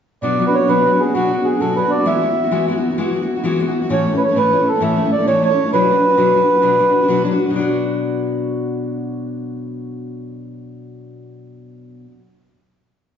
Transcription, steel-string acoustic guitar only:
0.22 B2 F#3 B3 D4 F#4
0.39 F#3 B3 D4 F#4
0.46 B3 D4 F#4
0.60 B3 D4 F#4
0.68 B2 F#3 B3 D4 F#4
0.85 F#3 B3 D4 F#4
0.92 B3 D4 F#4
1.07 B3 D4 F#4
1.14 B2 F#3 B3 D4 F#4
1.31 F#3 B3 D4 F#4
1.38 B3 D4 F#4
1.53 B3 D4 F#4
1.60 B2 F#3 B3 D4 F#4
1.77 F#3 B3 D4 F#4
1.85 B3 D4 F#4
1.99 B3 D4 F#4
2.06 E3 G#3 B3 E4 F#4
2.21 G#3 B3 E4 F#4
2.29 B3 E4 F#4
2.44 B3 E4 F#4
2.51 E3 G#3 B3 E4 F#4
2.68 G#3 B3 E4 F#4
2.76 B3 E4 F#4
2.90 B3 E4 F#4
2.98 E3 G#3 B3 E4 F#4
3.13 G#3 B3 E4 F#4
3.22 B3 E4 F#4
3.36 B3 E4 F#4
3.44 E3 G#3 B3 E4 F#4
3.60 G#3 B3 E4 F#4
3.68 B3 E4 F#4
3.82 B3 E4 F#4
3.89 A2 E3 A3 C#4 E4 A4
4.06 A3 C#4 E4 A4
4.13 A3 C#4 E4 A4
4.28 A3 C#4 E4 A4
4.35 A2 E3 A3 C#4 E4 A4
4.52 A3 C#4 E4 A4
4.58 A3 C#4 E4 A4
4.74 A3 C#4 E4 A4
4.80 A2 E3 A3 C#4 E4 A4
4.96 A3 C#4 E4 A4
5.04 A3 C#4 E4 A4
5.19 A3 C#4 E4 A4
5.27 A2 E3 A3 C#4 E4 A4
5.42 A3 C#4 E4 A4
5.51 A3 C#4 E4 A4
5.65 A3 C#4 E4 A4
5.73 B2 F#3 D4 F#4 B4
5.89 F#3 D4 F#4 B4
5.96 D4 F#4 B4
6.09 D4 F#4 B4
6.17 B2 F#3 D4 F#4 B4
6.33 F#3 D4 F#4 B4
6.40 D4 F#4 B4
6.55 D4 F#4 B4
6.62 B2 F#3 D4 F#4 B4
6.78 F#3 D4 F#4 B4
6.86 D4 F#4 B4
7.01 D4 F#4 B4
7.08 B2 F#3 D4 F#4 B4
7.23 F#3 D4 F#4 B4
7.31 D4 F#4 B4
7.46 D4 F#4 B4
7.51 B2 F#3
7.56 D4 F#4
7.61 B4

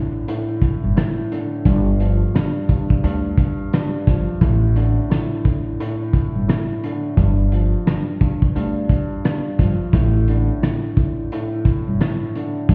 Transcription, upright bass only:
0.84 G1
1.65 G1
3.03 D2
4.07 G1
4.41 A1
6.36 G1
7.17 G1
8.56 D2
9.59 G1
9.93 A1
11.88 G1
12.69 G1

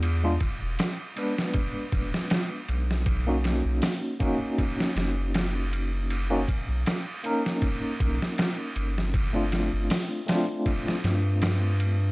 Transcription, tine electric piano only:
Already playing: G#3 B3 D4 F4
0.23 G#3 B3 D4 F4
1.16 G#3 B3 D4 B4
3.27 A#3 C#4 D#4 F#4
4.20 A#3 C#4 D#4 F#4
6.30 A#3 C#4 D#4 F#4
7.24 A#3 C#4 D#4 A#4
9.33 A3 C4 D4 F4
10.26 A3 C4 D4 F4

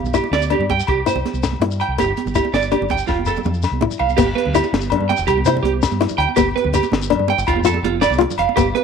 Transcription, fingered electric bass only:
0.03 B1
0.31 D2
0.59 G2
0.88 C2
1.15 C2
1.33 C2
1.60 G2
1.88 C2
1.99 G1
2.25 G1
2.53 G1
2.81 G1
3.09 F1
3.45 F2
3.71 C2
4.00 C2
4.18 G1
4.46 D2
4.72 G1
4.92 G2
5.19 E1
5.28 C2
5.45 C3
5.63 C2
5.91 G2
6.18 D2
6.38 G1
6.64 D2
6.92 G1
7.11 G2
7.38 G1
7.48 F1
7.63 F2
7.82 F1
8.10 C2
8.38 F1
8.57 G1

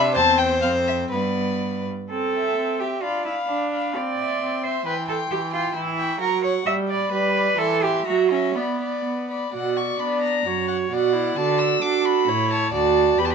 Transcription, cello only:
Already playing: C3
0.16 E2
0.63 F2
1.12 G2
2.11 A4
2.80 G4
3.02 F4
3.25 E4
3.48 D4
3.96 D5
4.63 C5
4.86 B4
5.09 A4
5.31 G4
5.52 F4
5.75 E4
6.21 A#4
6.43 C#5
6.66 E5
6.90 D5
7.12 B4
7.58 A4
7.82 G4
8.07 F#4
8.31 C#4
8.56 B3
9.54 B2
9.99 B3
10.46 F#2
10.91 B2
11.36 D3
11.82 D4
12.28 A2
12.73 D2
13.18 E2

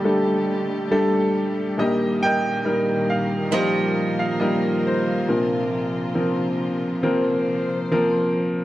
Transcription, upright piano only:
Already playing: A#1 A#2 D3 G3 A3 D4 G4 A4 D5 D#5 G5
0.04 G3 A3 D4 A4
0.91 G3 A3 D4 A4
1.77 A#1 A#2 G3 A#3 D#4 A#4 D#5
1.81 G4
2.23 A#4 D#5 G5
2.65 G3 A#3 D#4 A#4
3.10 F5
3.52 G3 A#3 D#4 A#4 D#5
3.56 G4 A#4
4.19 F5
4.40 G3 A#3 D#4 A#4 D#5
4.87 C5
5.28 A#1 A#2 F3 A#3 C4 F4 A#4
6.15 F3 A#3 C4 A#4
7.03 F3 A#3 C4 A#4
7.91 F3 A#3 C4 A#4

